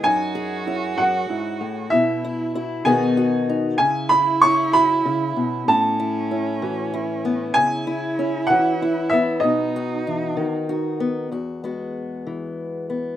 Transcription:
<<
  \new Staff \with { instrumentName = "Upright piano" } { \time 6/8 \key e \major \tempo 4. = 64 gis''4. fis''4 r8 | e''4. gis''4 r8 | gis''8 b''8 cis'''8 b''4. | a''2 r4 |
gis''4. fis''4 e''8 | dis''2 r4 | r2. | }
  \new Staff \with { instrumentName = "Cello" } { \time 6/8 \key e \major fis'2. | e'4. dis'4 r8 | e'2. | cis'2. |
e'2. | dis'2~ dis'8 r8 | r2. | }
  \new Staff \with { instrumentName = "Felt piano" } { \time 6/8 \key e \major dis'4 e'8 fis'8 e'4 | e'4 fis'8 gis'8 fis'4 | cis'4 e'8 fis'8 e'4 | cis'4 e'8 fis'8 e'4 |
r4 e'8 fis'8 e'4 | dis'4 e8 fis'8 dis'4 | r2. | }
  \new Staff \with { instrumentName = "Steel-string acoustic guitar" } { \time 6/8 \key e \major << { r8 gis'8 cis'2 | r8 e'8 e'8 <dis b dis' fis'>8 fis'8 dis'8 | r8 e'8 cis'2 | r8 e'8 cis'4 e'8 b8 |
r8 e'8 cis'4 e'8 b8 | r8 fis'8 dis'4 fis'8 b8 | fis'8 <gis b fis'>2 b8 | } \\ { fis,4. fis,8 gis,8 a,8 | b,4. b,4. | cis2 cis8 b,8 | a,4. e4. |
cis4. e4. | b,4. dis4. | e,4. e4. | } >> }
>>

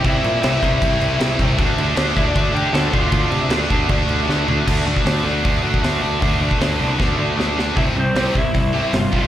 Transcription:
<<
  \new Staff \with { instrumentName = "Lead electric guitar" } { \time 4/4 \key d \minor \tempo 4 = 155 <e' e''>4. <e' e''>2 r8 | r4. <e' e''>16 <d' d''>8. <g' g''>8 <a' a''>8 <f' f''>8~ | <f' f''>8 r2. r8 | r1 |
r1 | <e' e''>8 <c' c''>4 <e' e''>4. <f' f''>8 <f' f''>8 | }
  \new Staff \with { instrumentName = "Distorted electric guitar" } { \time 4/4 \key d \minor <c g c'>4 <c g c'>8 <c g c'>8 <c g c'>4 <c g c'>8 <c g c'>8 | <d a d'>4 <d a d'>8 <d a d'>8 <d a d'>4 <d a d'>8 <d a d'>8 | <d a d'>4 <d a d'>8 <d a d'>8 <d a d'>4 <d a d'>8 <d a d'>8 | <d a d'>8 <d a d'>8 <d a d'>8 <d a d'>8 <d a d'>8 <d a d'>8 <d a d'>8 <d a d'>8 |
<d a d'>8 <d a d'>8 <d a d'>8 <d a d'>8 <d a d'>8 <d a d'>8 <d a d'>8 <d a d'>8 | <c g c'>8 <c g>8 <c g c'>8 <c g>8 <c g>8 <c g c'>8 <c g>8 <f, c f>8 | }
  \new Staff \with { instrumentName = "Picked electric bass" } { \clef bass \time 4/4 \key d \minor c,8 bes,8 c,8 c,8 c,8 c,8 c,8 c,8 | d,8 d,8 d,8 d,8 d,8 d8 d,8 d,8 | d,8 c8 d,8 d,8 d,8 d,8 d,8 d,8 | d,8 d,8 d,8 d,8 d,8 d,8 d,8 d,8 |
d,8 d,8 d,8 c,8 d,8 d,8 d,4 | c,8 c,8 c,8 c,8 c,4 g,,8 f,,8 | }
  \new DrumStaff \with { instrumentName = "Drums" } \drummode { \time 4/4 <cymc bd>8 cymc8 <cymc sn>8 <cymc bd>8 <cymc bd>8 cymc8 <cymc sn>8 <cymc bd>8 | <cymc bd>8 cymc8 <cymc sn>8 <cymc bd>8 <cymc bd>8 cymc8 <cymc sn>8 <cymc bd>8 | <cymc bd>8 cymc8 <cymc sn>8 <cymc bd>8 <cymc bd>8 cymc8 sn8 tomfh8 | <cymc bd>8. bd16 <hho sn>4 <hho bd>8. bd16 <hho sn>4 |
<hho bd>8. bd16 <hho sn>4 <bd sn>4 sn8 sn8 | <hho bd>4 <hho sn>8 bd8 <hho bd>4 <hho sn>8 bd8 | }
>>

